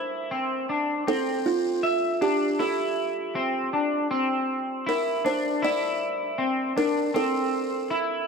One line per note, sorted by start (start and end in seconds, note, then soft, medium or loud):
0.00 0.31 E4 medium
0.00 1.12 C5 medium
0.31 0.69 C4 medium
0.69 1.07 D4 medium
1.07 1.83 C4 medium
1.07 1.47 A4 medium
1.46 2.24 F4 medium
1.83 2.21 E5 medium
2.21 2.59 D4 medium
2.21 2.61 G4 medium
2.59 3.35 E4 medium
2.59 3.70 A4 medium
3.35 3.73 C4 medium
3.73 4.10 D4 medium
4.11 4.87 C4 medium
4.86 5.25 E4 medium
4.86 5.27 A#4 medium
5.25 5.63 D4 medium
5.25 5.64 C5 medium
5.62 6.39 E4 medium
5.62 6.36 D5 medium
6.38 6.76 C4 medium
6.76 7.14 D4 medium
6.76 7.16 A#4 medium
7.14 7.90 C4 medium
7.14 7.87 A4 loud
7.90 8.27 E4 medium